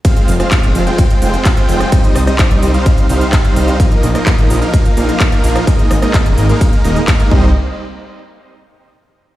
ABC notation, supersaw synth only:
X:1
M:4/4
L:1/16
Q:1/4=128
K:Fdor
V:1 name="Supersaw synth"
[A,CFcf]2 z [A,CFcf]4 [A,CFcg]3 [A,CFcg]2 z [A,CFcg]3 | [G,CE]2 z [G,CEce]4 [G,CEcf]3 [G,CEcf]2 z [G,CEcf]3 | [F,B,EBe]2 z [F,B,EBe]4 [F,B,EBf]3 [F,B,EBf]2 z [F,B,EBf]3 | [A,B,EBe]2 z [A,B,EBe]4 [A,B,EBf]3 [A,B,EBe] z2 [A,B,EBf] [G,CEce]2 |
z16 |]